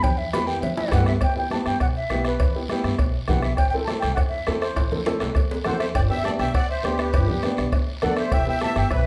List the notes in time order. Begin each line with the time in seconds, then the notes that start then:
0.03 E2 G5, bombo low, cowbell, high conga, low conga, long guiro
0.18 E5
0.33 B3 E4 G4 B5, bombo rim, cowbell, high conga, short guiro
0.47 B3 E4 G4 G5, short guiro
0.62 E2 E5, cowbell, high conga, low conga, long guiro
0.76 E5, high conga, high timbale
0.88 B3 E4 G4, bombo low, bombo rim, high timbale, short guiro
0.92 G2 F#5, cowbell, high conga
0.98 low timbale
1.06 E5, bombo rim, low timbale, short guiro
1.21 E2 G5, bombo low, bombo rim, cowbell, long guiro
1.36 B3 E4 G4 G5
1.51 B3 E4 G4 A5, bombo rim, high conga, short guiro
1.66 G2 G5, bombo rim, short guiro
1.80 B1 F#5, bombo low, bombo rim, cowbell, long guiro
1.96 E5
2.10 B1 B3 E4 G4, bombo rim, high conga, short guiro
2.25 B4, bombo rim, short guiro
2.40 E2, bombo low, bombo rim, cowbell, long guiro
2.55 B3 E4 G4
2.69 B3 E4 G4, bombo rim, high conga, short guiro
2.84 G2, bombo rim, short guiro
2.99 B1, bombo low, bombo rim, cowbell, long guiro
3.28 B1 B3 E4 G4 F#5, bombo low, bombo rim, high conga, low conga, short guiro
3.42 E5, bombo rim, short guiro
3.56 A1 G5, bombo low, bombo rim, cowbell, long guiro
3.70 C4 G5
3.74 E4 A4
3.84 C4 A5, bombo rim, high conga, short guiro
3.89 E4 A4
3.99 C2 G5, bombo rim, short guiro
4.15 E2 F#5, bombo low, bombo rim, cowbell, long guiro
4.29 E5
4.46 E2 C4 E4 A4, bombo rim, high conga, low timbale, short guiro
4.61 C5, bombo rim, short guiro
4.76 A1, bombo low, bombo rim, cowbell, high timbale, long guiro
4.91 C4 E4 A4, high conga, low conga
5.05 C4 E4 A4, bombo rim, high conga, high timbale, short guiro
5.20 C2, bombo rim, low timbale, short guiro
5.35 E2, bombo low, bombo rim, cowbell, long guiro
5.51 low timbale
5.65 E2 C4 E4 A4 C5 F#5, bombo rim, high conga, low conga, low timbale, short guiro
5.79 C5 E5, bombo rim, low timbale, short guiro
5.95 G1 D5 G5, bombo low, bombo rim, cowbell, long guiro
6.09 B3 D4 G4 E5 G5
6.23 B3 D4 G4 D5 A5, bombo rim, high conga, short guiro
6.39 B1 E5 G5, bombo rim, short guiro
6.54 D2 D5 F#5, bombo low, bombo rim, cowbell, long guiro
6.70 C5 E5
6.83 D2 B3 D4 G4 C5, bombo rim, high conga, low timbale, short guiro
6.98 G4 B4, bombo rim, short guiro
7.13 G1, bombo low, bombo rim, cowbell, long guiro
7.28 B3 D4 G4, low conga
7.43 B3 D4 G4, bombo rim, high conga, short guiro
7.57 B1, bombo rim, short guiro
7.72 D2, bombo low, bombo rim, cowbell, long guiro
8.02 D2 B3 D4 A4 D5 F#5, bombo rim, high conga, low conga, low timbale, short guiro
8.17 C5 E5, bombo rim, short guiro
8.32 E1 E5 G5, bombo low, bombo rim, cowbell, long guiro
8.46 B3 E4 G4 E5 G5
8.61 B3 E4 G4 E5 A5, bombo rim, high conga, short guiro
8.76 G1 E5 G5, bombo rim, short guiro
8.91 B1 B4 E5, bombo low, bombo rim, cowbell, long guiro